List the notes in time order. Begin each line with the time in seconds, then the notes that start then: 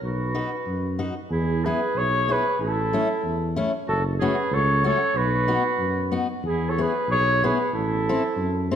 0.02 B1 F#4 B4
0.35 D#4 F#4 B4
0.66 F#2
0.99 D#4 F#4 B4
1.30 E2 E4 G#4
1.65 B3 E4 G#4 B4
1.95 B1 G#4 C#5
2.28 B3 E4 G#4 B4
2.59 A1 E4 A4
2.93 A3 C#4 E4
3.24 E2
3.56 A3 C#4 E4
3.87 F#1 F#4 A4
4.19 A3 C#4 F#4 G#4
4.23 B4
4.51 C#2 A4 C#5
4.84 A3 C#4 F#4 A4 C#5
5.14 B1 F#4 B4
5.48 B3 D#4 F#4
5.78 F#2
6.11 B3 D#4 F#4
6.43 E2 E4 G#4
6.69 A4 C#5
6.78 B3 E4 G#4 B4
7.08 B1 G#4 C#5
7.43 B3 E4 G#4 B4
7.73 A1 E4 A4
8.09 C4 E4 A4
8.36 F#2
8.71 C4 E4 A4